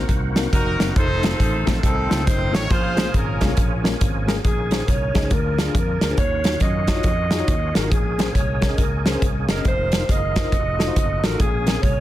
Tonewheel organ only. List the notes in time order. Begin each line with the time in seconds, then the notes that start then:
Already playing: D#3 A#3 C4 F#4
0.96 D#3 A3 F4
2.69 F3 A#3 C#4 G#4
4.44 D#3 A#3 C#4 G#4
5.31 F3 A#3 D4
6.18 D#3 C#4 F4 F#4
7.92 G#3 A#3 C#4 G#4
9.64 D#3 A#3 F4
10.53 F3 A3 D#4 F#4
11.38 G#3 A#3 C#4 G#4